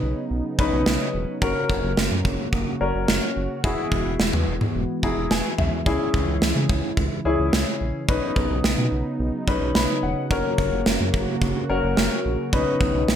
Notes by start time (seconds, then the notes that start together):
Already playing: C#3 F#3 B3 C#4 D#4 B4
0.03 B1
0.31 B1
0.59 B1 C#4 D#4 B4, kick
0.72 B1
0.86 B1, snare
1.14 E1
1.41 F#1 A#3 C#4 F#4 A#4, kick
1.70 F#1, kick
1.84 F#1
1.97 F#1, snare
2.11 F#2
2.25 F#1, kick
2.53 F#1, kick
2.81 F#1 C#4 F#4 A#4
2.95 F#1
3.08 F#1, snare
3.36 F#1
3.64 E1 E3 G#3 B3 E4 F#4 G#4, kick
3.92 E1, kick
4.06 E1
4.20 E1, snare
4.33 E2, mid tom
4.47 E1
4.61 mid tom
4.75 E1
5.03 E1 E4 F#4 G#4 A#5, kick
5.17 E1
5.31 E1 G#5, snare
5.58 B1 E5, mid tom
5.86 C#2 C#3 C#4 E4 G#4, kick
6.14 C#2, kick
6.28 C#2
6.42 C#2, snare
6.56 C#3
6.69 C#2, kick
6.97 C#2, kick
7.25 C#2 C#4 E4 G#4
7.39 C#2
7.53 C#2, snare
7.81 A#1
8.08 B1 F#3 B3 C#4 D#4 B4, kick
8.36 B1, kick
8.50 B1
8.64 B1, snare
8.78 B2
8.92 B1
9.20 B1
9.47 B1 C#4 D#4 B4, kick
9.61 B1
9.75 B1 B5, snare
10.03 E1 F#5
10.31 F#1 A#3 C#4 F#4 A#4, kick
10.58 F#1, kick
10.72 F#1
10.86 F#1, snare
11.00 F#2
11.14 F#1, kick
11.42 F#1, kick
11.70 F#1 C#4 F#4 A#4
11.84 F#1
11.97 F#1, snare
12.25 A#1
12.53 B1 F#3 B3 C#4 D#4 B4, kick
12.81 B1, kick
12.95 B1
13.08 B1, snare